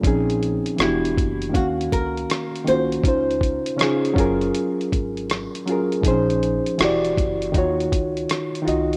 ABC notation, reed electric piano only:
X:1
M:4/4
L:1/16
Q:"Swing 16ths" 1/4=80
K:Ebdor
V:1 name="Reed electric piano"
[B,,F,CDEA]3 z [=E,=B,=D^F=G]4 [_E,_B,_D_G=f]4 z2 [E,B,D=FG]2 | [D,DEFc]3 z [D,DEFA]2 [G,DFAB]6 z2 [G,DFAB]2 | [B,,F,CDEAc]3 z [=E,=E^F=G=d]4 [_E,_E=F_G_d]4 z2 [E,EFGe]2 |]